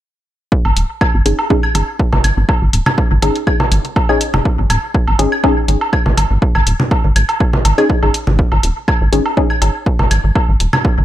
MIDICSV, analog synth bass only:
0, 0, Header, 1, 2, 480
1, 0, Start_track
1, 0, Tempo, 491803
1, 508, Time_signature, 4, 2, 24, 8
1, 10784, End_track
2, 0, Start_track
2, 0, Title_t, "Analog synth bass"
2, 0, Program_c, 0, 38
2, 634, Note_on_c, 0, 32, 95
2, 705, Note_off_c, 0, 32, 0
2, 748, Note_on_c, 0, 27, 94
2, 827, Note_off_c, 0, 27, 0
2, 1114, Note_on_c, 0, 32, 100
2, 1185, Note_off_c, 0, 32, 0
2, 1227, Note_on_c, 0, 32, 86
2, 1307, Note_off_c, 0, 32, 0
2, 1707, Note_on_c, 0, 32, 90
2, 1787, Note_off_c, 0, 32, 0
2, 2074, Note_on_c, 0, 32, 90
2, 2145, Note_off_c, 0, 32, 0
2, 2187, Note_on_c, 0, 32, 79
2, 2267, Note_off_c, 0, 32, 0
2, 2315, Note_on_c, 0, 32, 86
2, 2385, Note_off_c, 0, 32, 0
2, 2554, Note_on_c, 0, 32, 92
2, 2625, Note_off_c, 0, 32, 0
2, 2667, Note_on_c, 0, 27, 91
2, 2747, Note_off_c, 0, 27, 0
2, 3035, Note_on_c, 0, 32, 97
2, 3105, Note_off_c, 0, 32, 0
2, 3147, Note_on_c, 0, 32, 90
2, 3227, Note_off_c, 0, 32, 0
2, 3626, Note_on_c, 0, 32, 83
2, 3706, Note_off_c, 0, 32, 0
2, 4234, Note_on_c, 0, 30, 80
2, 4305, Note_off_c, 0, 30, 0
2, 4473, Note_on_c, 0, 32, 92
2, 4545, Note_off_c, 0, 32, 0
2, 4586, Note_on_c, 0, 27, 96
2, 4666, Note_off_c, 0, 27, 0
2, 4953, Note_on_c, 0, 32, 96
2, 5024, Note_off_c, 0, 32, 0
2, 5067, Note_on_c, 0, 32, 91
2, 5147, Note_off_c, 0, 32, 0
2, 5546, Note_on_c, 0, 32, 95
2, 5627, Note_off_c, 0, 32, 0
2, 5914, Note_on_c, 0, 32, 94
2, 5985, Note_off_c, 0, 32, 0
2, 6026, Note_on_c, 0, 32, 81
2, 6107, Note_off_c, 0, 32, 0
2, 6154, Note_on_c, 0, 32, 84
2, 6225, Note_off_c, 0, 32, 0
2, 6393, Note_on_c, 0, 32, 97
2, 6465, Note_off_c, 0, 32, 0
2, 6506, Note_on_c, 0, 27, 92
2, 6586, Note_off_c, 0, 27, 0
2, 6873, Note_on_c, 0, 32, 102
2, 6945, Note_off_c, 0, 32, 0
2, 6986, Note_on_c, 0, 32, 96
2, 7066, Note_off_c, 0, 32, 0
2, 7466, Note_on_c, 0, 32, 84
2, 7546, Note_off_c, 0, 32, 0
2, 7834, Note_on_c, 0, 32, 91
2, 7905, Note_off_c, 0, 32, 0
2, 8074, Note_on_c, 0, 32, 99
2, 8220, Note_off_c, 0, 32, 0
2, 8314, Note_on_c, 0, 32, 100
2, 8385, Note_off_c, 0, 32, 0
2, 8427, Note_on_c, 0, 27, 95
2, 8507, Note_off_c, 0, 27, 0
2, 8794, Note_on_c, 0, 32, 99
2, 8865, Note_off_c, 0, 32, 0
2, 8907, Note_on_c, 0, 32, 88
2, 8987, Note_off_c, 0, 32, 0
2, 9386, Note_on_c, 0, 32, 96
2, 9467, Note_off_c, 0, 32, 0
2, 9754, Note_on_c, 0, 32, 93
2, 9825, Note_off_c, 0, 32, 0
2, 9867, Note_on_c, 0, 32, 80
2, 9947, Note_off_c, 0, 32, 0
2, 9994, Note_on_c, 0, 32, 82
2, 10065, Note_off_c, 0, 32, 0
2, 10235, Note_on_c, 0, 32, 96
2, 10305, Note_off_c, 0, 32, 0
2, 10347, Note_on_c, 0, 27, 93
2, 10427, Note_off_c, 0, 27, 0
2, 10714, Note_on_c, 0, 32, 100
2, 10784, Note_off_c, 0, 32, 0
2, 10784, End_track
0, 0, End_of_file